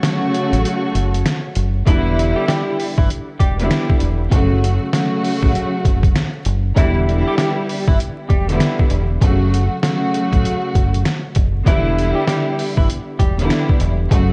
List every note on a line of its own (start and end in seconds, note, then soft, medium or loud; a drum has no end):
0.00 1.58 C#3 loud
0.00 1.58 F#3 medium
0.00 1.58 A3 loud
0.00 1.84 F#4 medium
0.00 1.59 F#4 loud
0.00 1.84 C#5 medium
0.00 1.84 A5 medium
0.00 1.84 C#6 loud
0.00 snare loud
0.05 closed hi-hat loud
0.35 closed hi-hat medium
0.53 0.63 A1 medium
0.53 closed hi-hat medium
0.65 closed hi-hat medium
0.95 1.23 F#1 loud
0.95 closed hi-hat medium
1.14 closed hi-hat medium
1.26 snare loud
1.26 closed hi-hat loud
1.55 1.84 F#1 medium
1.55 closed hi-hat medium
1.86 2.32 E1 medium
1.86 3.30 D3 loud
1.86 2.34 E3 medium
1.86 3.30 G3 loud
1.86 3.31 B3 loud
1.86 3.31 E4 loud
1.86 2.34 E4 loud
1.86 kick loud
1.86 closed hi-hat medium
2.19 closed hi-hat medium
2.36 2.47 G3 medium
2.36 2.46 G4 medium
2.48 2.95 G3 medium
2.48 2.94 G4 medium
2.48 snare loud
2.48 closed hi-hat medium
2.79 open hi-hat soft
2.98 3.08 G1 medium
2.98 3.09 E3 medium
2.98 3.08 E4 medium
2.98 kick medium
3.10 closed hi-hat medium
3.39 3.68 E1 medium
3.39 3.57 G3 medium
3.39 3.57 G4 medium
3.39 kick medium
3.39 closed hi-hat medium
3.59 4.14 D3 loud
3.59 4.15 G3 medium
3.59 4.15 B3 loud
3.59 4.15 E4 loud
3.59 closed hi-hat medium
3.71 snare loud
3.71 closed hi-hat loud
3.90 kick loud
4.00 4.29 E1 medium
4.00 closed hi-hat medium
4.31 4.77 F#1 loud
4.31 4.89 C#3 medium
4.31 4.89 F#3 medium
4.31 4.89 A3 medium
4.31 4.89 F#4 loud
4.31 kick loud
4.31 closed hi-hat loud
4.64 closed hi-hat medium
4.92 6.48 C#3 loud
4.92 6.48 F#3 medium
4.92 6.48 A3 loud
4.92 6.48 F#4 loud
4.92 snare loud
4.92 closed hi-hat loud
5.25 open hi-hat soft
5.43 5.53 A1 medium
5.43 kick medium
5.55 closed hi-hat medium
5.85 6.13 F#1 medium
5.85 kick medium
5.85 closed hi-hat medium
6.03 kick loud
6.03 closed hi-hat medium
6.16 snare loud
6.16 closed hi-hat loud
6.45 6.74 F#1 medium
6.45 closed hi-hat medium
6.76 7.22 E1 loud
6.76 8.20 D3 loud
6.76 7.24 E3 medium
6.76 8.20 G3 loud
6.76 8.20 B3 medium
6.76 8.21 E4 loud
6.76 7.24 E4 loud
6.76 kick loud
6.76 closed hi-hat loud
7.09 closed hi-hat medium
7.27 7.38 G3 medium
7.27 7.37 G4 medium
7.38 7.85 G3 medium
7.38 7.85 G4 medium
7.38 snare loud
7.38 closed hi-hat loud
7.69 open hi-hat soft
7.88 7.98 G1 medium
7.88 7.98 E3 medium
7.88 7.98 E4 medium
7.88 kick loud
8.00 closed hi-hat medium
8.29 8.58 E1 medium
8.29 8.47 G3 medium
8.29 8.46 G4 medium
8.29 kick medium
8.29 closed hi-hat medium
8.49 9.04 D3 loud
8.49 9.04 G3 medium
8.49 9.05 B3 medium
8.49 9.05 E4 loud
8.49 closed hi-hat medium
8.60 snare loud
8.60 closed hi-hat loud
8.79 kick loud
8.90 9.19 E1 medium
8.90 closed hi-hat medium
9.21 9.67 F#1 loud
9.21 9.78 C#3 loud
9.21 9.79 F#3 medium
9.21 9.79 A3 medium
9.21 9.79 F#4 loud
9.21 kick loud
9.21 closed hi-hat medium
9.54 closed hi-hat medium
9.82 11.38 C#3 loud
9.82 11.38 F#3 medium
9.82 11.38 A3 loud
9.82 11.38 F#4 loud
9.82 snare loud
9.82 closed hi-hat medium
10.14 closed hi-hat medium
10.33 10.43 A1 medium
10.33 kick medium
10.33 closed hi-hat medium
10.45 closed hi-hat medium
10.75 11.03 F#1 medium
10.75 kick medium
10.75 closed hi-hat medium
10.94 closed hi-hat medium
11.05 snare loud
11.05 closed hi-hat loud
11.35 11.64 F#1 medium
11.35 kick medium
11.35 closed hi-hat medium
11.66 12.12 E1 loud
11.66 13.10 D3 loud
11.66 12.14 E3 medium
11.66 13.10 G3 loud
11.66 13.10 B3 medium
11.66 13.11 E4 loud
11.66 12.14 E4 loud
11.66 kick loud
11.66 closed hi-hat medium
11.99 closed hi-hat medium
12.15 12.26 G3 medium
12.15 12.26 G4 medium
12.28 12.75 G3 medium
12.28 12.74 G4 medium
12.28 snare loud
12.28 closed hi-hat loud
12.59 open hi-hat soft
12.77 12.88 G1 medium
12.77 12.88 E3 medium
12.77 12.88 E4 medium
12.77 kick medium
12.90 closed hi-hat medium
13.19 13.47 E1 medium
13.19 13.37 G3 medium
13.19 13.36 G4 medium
13.19 kick medium
13.19 closed hi-hat medium
13.39 13.94 D3 loud
13.39 13.94 G3 medium
13.39 13.94 B3 medium
13.39 13.95 E4 loud
13.39 closed hi-hat medium
13.50 snare loud
13.50 closed hi-hat loud
13.69 kick loud
13.80 14.08 E1 medium
13.80 closed hi-hat medium
14.10 14.33 F#1 loud
14.10 14.33 C#3 medium
14.10 14.33 F#3 medium
14.10 14.33 A3 medium
14.10 14.33 F#4 loud
14.10 kick loud
14.10 closed hi-hat loud